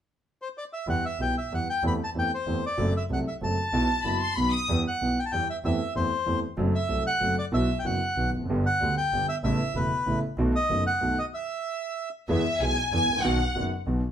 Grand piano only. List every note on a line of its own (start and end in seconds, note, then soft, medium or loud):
0.87 1.01 E2 medium
0.87 1.01 E3 medium
0.87 1.01 G3 soft
0.87 1.01 B3 soft
0.87 1.01 G4 medium
1.19 1.33 B1 soft
1.19 1.33 B2 soft
1.19 1.33 E3 soft
1.19 1.33 G3 soft
1.19 1.33 B3 soft
1.19 1.33 G4 soft
1.52 1.65 E2 soft
1.52 1.65 E3 soft
1.52 1.65 G3 soft
1.52 1.65 B3 soft
1.52 1.65 G4 soft
1.83 1.97 E2 medium
1.83 1.97 E3 medium
1.83 1.96 A3 soft
1.83 1.97 C4 soft
1.83 1.97 G4 medium
2.15 2.28 E2 soft
2.15 2.28 E3 soft
2.15 2.28 A3 soft
2.15 2.28 C4 soft
2.15 2.28 G4 soft
2.46 2.60 E2 soft
2.46 2.60 E3 soft
2.46 2.60 A3 soft
2.46 2.60 C4 soft
2.46 2.60 G4 soft
2.78 2.91 F#2 medium
2.78 2.91 F#3 medium
2.78 2.91 A3 medium
2.78 2.91 C4 medium
2.78 2.91 A4 medium
3.10 3.23 C2 soft
3.10 3.23 C3 soft
3.10 3.23 F#3 soft
3.10 3.23 A3 soft
3.10 3.23 C4 soft
3.10 3.23 A4 soft
3.41 3.54 F#2 medium
3.41 3.54 F#3 soft
3.41 3.54 A3 soft
3.41 3.55 C4 soft
3.41 3.55 A4 soft
3.73 3.86 B1 medium
3.73 3.86 B2 medium
3.73 3.86 E3 medium
3.73 3.86 F#3 medium
3.73 3.86 B3 medium
3.73 3.86 F#4 medium
4.04 4.18 F#1 soft
4.04 4.18 F#2 soft
4.04 4.18 E3 soft
4.04 4.18 F#3 soft
4.04 4.18 B3 soft
4.04 4.18 F#4 soft
4.37 4.51 B1 medium
4.37 4.50 B2 soft
4.37 4.50 D#3 soft
4.37 4.50 F#3 soft
4.37 4.51 B3 soft
4.37 4.51 F#4 soft
4.69 4.82 E2 medium
4.69 4.82 E3 medium
4.69 4.83 G3 soft
4.69 4.83 B3 medium
4.69 4.83 G4 medium
5.01 5.15 B1 soft
5.01 5.15 B2 soft
5.01 5.14 E3 soft
5.01 5.14 G3 soft
5.01 5.15 B3 soft
5.01 5.15 G4 soft
5.33 5.46 E2 soft
5.33 5.46 E3 soft
5.33 5.46 G3 soft
5.33 5.46 B3 soft
5.33 5.46 G4 soft
5.64 5.77 E2 medium
5.64 5.77 E3 medium
5.64 5.77 A3 soft
5.64 5.78 C4 medium
5.64 5.78 G4 medium
5.95 6.08 E2 soft
5.95 6.08 E3 soft
5.95 6.08 A3 soft
5.95 6.08 C4 soft
5.95 6.08 G4 soft
6.26 6.40 E2 soft
6.26 6.40 E3 medium
6.26 6.40 A3 soft
6.26 6.40 C4 soft
6.26 6.40 G4 soft
6.57 6.71 F#2 medium
6.57 6.71 F#3 medium
6.57 6.71 A3 medium
6.57 6.71 C4 medium
6.57 6.71 A4 medium
6.89 7.02 C2 soft
6.89 7.02 C3 soft
6.89 7.02 F#3 soft
6.89 7.02 A3 soft
6.89 7.02 C4 soft
6.89 7.03 A4 soft
7.21 7.34 F#2 soft
7.21 7.34 F#3 medium
7.21 7.34 A3 soft
7.21 7.34 C4 soft
7.21 7.34 A4 soft
7.52 7.66 B1 medium
7.52 7.66 B2 medium
7.52 7.66 E3 medium
7.52 7.66 F#3 medium
7.52 7.66 B3 medium
7.52 7.66 F#4 medium
7.84 7.98 F#1 soft
7.84 7.98 F#2 soft
7.84 7.98 E3 soft
7.84 7.98 F#3 soft
7.84 7.98 B3 soft
7.84 7.98 F#4 soft
8.16 8.30 B1 soft
8.16 8.30 B2 soft
8.16 8.30 D#3 soft
8.16 8.30 F#3 soft
8.16 8.30 B3 soft
8.16 8.30 F#4 soft
8.36 8.41 E2 soft
8.41 8.45 F2 soft
8.41 8.49 F#2 medium
8.50 8.63 G1 medium
8.50 8.63 G2 medium
8.50 8.63 D3 medium
8.50 8.63 G3 soft
8.50 8.63 B3 medium
8.50 8.63 G4 medium
8.81 8.95 D2 soft
8.81 8.95 D3 soft
8.81 8.95 G3 soft
8.81 8.94 B3 soft
8.81 8.95 G4 soft
9.13 9.26 G1 soft
9.13 9.26 G2 medium
9.13 9.26 D3 soft
9.13 9.26 G3 soft
9.13 9.26 B3 soft
9.13 9.27 G4 soft
9.44 9.57 A1 medium
9.44 9.57 A2 medium
9.44 9.57 C#3 medium
9.44 9.57 A3 medium
9.44 9.57 B3 medium
9.44 9.57 E4 medium
9.75 9.88 E1 soft
9.75 9.89 E2 soft
9.75 9.88 C#3 soft
9.75 9.89 A3 soft
9.75 9.89 B3 soft
9.75 9.89 E4 soft
10.06 10.20 A1 medium
10.06 10.20 A2 soft
10.06 10.20 C#3 soft
10.06 10.20 A3 soft
10.06 10.20 B3 soft
10.06 10.20 E4 medium
10.38 10.52 B1 medium
10.38 10.52 B2 medium
10.38 10.51 D#3 medium
10.38 10.51 A3 medium
10.38 10.52 B3 medium
10.38 10.52 F#4 medium
10.69 10.83 F#1 medium
10.69 10.83 F#2 soft
10.69 10.83 D#3 soft
10.69 10.83 A3 soft
10.69 10.83 B3 soft
10.69 10.83 F#4 soft
11.01 11.14 B1 medium
11.01 11.14 B2 soft
11.01 11.14 D#3 soft
11.01 11.14 A3 soft
11.01 11.14 B3 soft
11.01 11.15 F#4 soft
12.29 12.42 E2 medium
12.29 12.42 E3 medium
12.29 12.42 G#3 medium
12.29 12.42 B3 medium
12.29 12.42 G#4 medium
12.61 12.74 B1 medium
12.61 12.74 B2 soft
12.61 12.74 E3 soft
12.61 12.74 G#3 soft
12.61 12.74 B3 soft
12.61 12.74 G#4 soft
12.93 13.06 E2 medium
12.93 13.06 E3 medium
12.93 13.06 G#3 soft
12.93 13.06 B3 soft
12.93 13.06 G#4 medium
13.12 13.16 G#1 soft
13.12 13.20 A1 medium
13.20 13.24 A#1 medium
13.20 13.37 D#3 medium
13.20 13.37 F#3 medium
13.24 13.37 B1 medium
13.24 13.37 B2 medium
13.24 13.37 B3 medium
13.24 13.37 F#4 medium
13.55 13.68 F#1 medium
13.55 13.68 F#2 soft
13.55 13.68 D#3 soft
13.55 13.68 F#3 soft
13.55 13.68 B3 soft
13.55 13.68 F#4 soft
13.87 13.99 B1 medium
13.87 14.00 B2 medium
13.87 13.99 D#3 soft
13.87 13.99 F#3 soft
13.87 13.99 B3 soft
13.87 13.99 F#4 medium